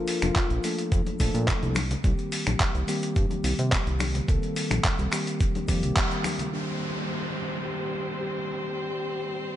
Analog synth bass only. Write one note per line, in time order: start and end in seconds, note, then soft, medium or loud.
0.22 0.31 F1 medium
0.51 0.59 A#1 medium
0.92 1.02 F2 medium
1.20 1.30 A#1 loud
1.34 1.53 A#2 loud
1.63 1.97 C2 medium
2.04 2.14 C2 loud
2.47 2.56 A#1 medium
2.75 2.84 C2 medium
3.16 3.26 G2 loud
3.44 3.54 C2 medium
3.59 3.77 C3 loud
3.87 4.21 C2 medium
4.28 4.38 C2 loud
4.71 4.80 A#1 medium
4.99 5.08 C2 medium
5.69 5.85 F2 medium
5.83 5.92 C2 medium